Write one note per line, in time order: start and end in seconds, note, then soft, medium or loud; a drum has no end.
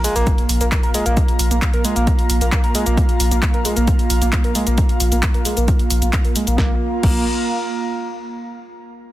0.00 6.57 A#3 medium
0.00 6.58 F4 medium
0.00 6.58 F5 medium
0.00 6.58 A#5 medium
0.00 sub drop medium
0.04 0.15 G#3 loud
0.04 open hi-hat loud
0.04 shaker medium
0.16 0.26 A#1 medium
0.16 0.26 A#3 loud
0.16 closed hi-hat medium
0.16 shaker soft
0.27 0.31 A#3 medium
0.27 kick loud
0.27 closed hi-hat medium
0.27 shaker soft
0.38 0.49 A#1 medium
0.38 closed hi-hat medium
0.49 0.60 A#1 loud
0.49 open hi-hat loud
0.49 shaker medium
0.61 0.72 A#1 medium
0.61 0.65 A#3 medium
0.61 closed hi-hat medium
0.61 shaker soft
0.72 0.79 A#3 medium
0.72 kick loud
0.72 clap loud
0.72 closed hi-hat medium
0.72 shaker soft
0.83 0.94 A#1 medium
0.83 0.90 A#4 medium
0.83 closed hi-hat medium
0.94 1.05 G#3 loud
0.94 open hi-hat loud
0.94 shaker medium
1.06 1.17 A#1 medium
1.06 1.16 A#3 loud
1.06 closed hi-hat medium
1.06 shaker soft
1.17 1.21 A#3 medium
1.17 kick loud
1.17 closed hi-hat medium
1.17 shaker soft
1.28 1.39 A#1 medium
1.28 closed hi-hat medium
1.39 1.50 A#1 loud
1.39 open hi-hat loud
1.39 shaker medium
1.51 1.62 A#1 medium
1.51 1.55 A#3 medium
1.51 closed hi-hat medium
1.51 shaker soft
1.62 1.69 A#3 medium
1.62 kick loud
1.62 clap loud
1.62 closed hi-hat medium
1.62 shaker soft
1.73 1.84 A#1 medium
1.73 1.80 A#4 medium
1.73 closed hi-hat medium
1.85 1.95 G#3 loud
1.85 open hi-hat loud
1.85 shaker medium
1.96 2.07 A#1 medium
1.96 2.06 A#3 loud
1.96 closed hi-hat medium
1.96 shaker soft
2.07 2.11 A#3 medium
2.07 kick loud
2.07 closed hi-hat medium
2.07 shaker soft
2.19 2.29 A#1 medium
2.19 closed hi-hat medium
2.30 2.41 A#1 loud
2.30 open hi-hat loud
2.30 shaker medium
2.41 2.52 A#1 medium
2.41 2.45 A#3 medium
2.41 closed hi-hat medium
2.41 shaker soft
2.52 2.59 A#3 medium
2.52 kick loud
2.52 clap loud
2.52 closed hi-hat medium
2.52 shaker soft
2.64 2.75 A#1 medium
2.64 2.71 A#4 medium
2.64 closed hi-hat medium
2.75 2.85 G#3 loud
2.75 open hi-hat loud
2.75 shaker medium
2.86 2.97 A#1 medium
2.86 2.97 A#3 loud
2.86 closed hi-hat medium
2.86 shaker soft
2.97 3.02 A#3 medium
2.97 kick loud
2.97 closed hi-hat medium
2.97 shaker soft
3.09 3.19 A#1 medium
3.09 closed hi-hat medium
3.20 3.31 A#1 loud
3.20 open hi-hat loud
3.20 shaker medium
3.31 3.42 A#1 medium
3.31 3.36 A#3 medium
3.31 closed hi-hat medium
3.31 shaker soft
3.43 3.50 A#3 medium
3.43 kick loud
3.43 clap loud
3.43 closed hi-hat medium
3.43 shaker soft
3.54 3.65 A#1 medium
3.54 3.61 A#4 medium
3.54 closed hi-hat medium
3.65 3.76 G#3 loud
3.65 open hi-hat loud
3.65 shaker medium
3.77 3.87 A#1 medium
3.77 3.87 A#3 loud
3.77 closed hi-hat medium
3.77 shaker soft
3.88 3.92 A#3 medium
3.88 kick loud
3.88 closed hi-hat medium
3.88 shaker soft
3.99 4.10 A#1 medium
3.99 closed hi-hat medium
4.10 4.21 A#1 loud
4.10 open hi-hat loud
4.10 shaker medium
4.22 4.33 A#1 medium
4.22 4.26 A#3 medium
4.22 closed hi-hat medium
4.22 shaker soft
4.33 4.40 A#3 medium
4.33 kick loud
4.33 clap loud
4.33 closed hi-hat medium
4.33 shaker soft
4.44 4.55 A#1 medium
4.44 4.51 A#4 medium
4.44 closed hi-hat medium
4.55 4.66 G#3 loud
4.55 open hi-hat loud
4.55 shaker medium
4.67 4.78 A#1 medium
4.67 4.77 A#3 loud
4.67 closed hi-hat medium
4.67 shaker soft
4.78 4.82 A#3 medium
4.78 kick loud
4.78 closed hi-hat medium
4.78 shaker soft
4.89 5.00 A#1 medium
4.89 closed hi-hat medium
5.00 5.11 A#1 loud
5.00 open hi-hat loud
5.00 shaker medium
5.12 5.23 A#1 medium
5.12 5.16 A#3 medium
5.12 closed hi-hat medium
5.12 shaker soft
5.23 5.30 A#3 medium
5.23 kick loud
5.23 clap loud
5.23 closed hi-hat medium
5.23 shaker soft
5.34 5.45 A#1 medium
5.34 5.41 A#4 medium
5.34 closed hi-hat medium
5.45 5.56 G#3 loud
5.45 open hi-hat loud
5.45 shaker medium
5.57 5.68 A#1 medium
5.57 5.67 A#3 loud
5.57 closed hi-hat medium
5.57 shaker soft
5.68 5.72 A#3 medium
5.68 kick loud
5.68 closed hi-hat medium
5.68 shaker soft
5.79 5.90 A#1 medium
5.79 closed hi-hat medium
5.90 6.02 A#1 loud
5.90 open hi-hat loud
5.90 shaker medium
6.02 6.13 A#1 medium
6.02 6.06 A#3 medium
6.02 closed hi-hat medium
6.02 shaker soft
6.13 6.20 A#3 medium
6.13 kick loud
6.13 clap loud
6.13 closed hi-hat medium
6.13 shaker soft
6.25 6.35 A#1 medium
6.25 6.31 A#4 medium
6.25 closed hi-hat medium
6.36 6.46 G#3 loud
6.36 open hi-hat loud
6.36 shaker medium
6.47 6.58 A#1 medium
6.47 6.57 A#3 loud
6.47 closed hi-hat medium
6.47 shaker soft
6.58 6.71 A#1 loud
6.58 8.35 A#3 medium
6.58 6.71 A#3 medium
6.58 kick loud
6.58 snare medium
6.65 8.35 F4 medium
6.72 8.35 F5 medium
6.78 8.35 A#5 medium
7.03 7.24 A#1 loud
7.03 7.24 A#3 medium
7.03 kick loud
7.03 crash medium